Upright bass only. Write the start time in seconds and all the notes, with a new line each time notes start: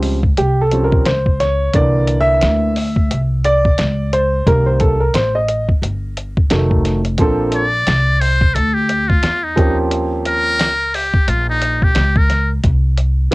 Already playing: C#2
0.38 C2
1.05 C#2
1.74 C2
2.43 D2
3.11 C2
3.79 C#2
4.47 C2
5.14 A1
5.69 muted upright bass stroke
5.82 G1
6.50 F1
7.19 A#1
7.87 C2
8.55 D2
9.23 E2
9.57 D#2
10.59 C#2
11.28 A#1
11.96 C#2
12.64 C2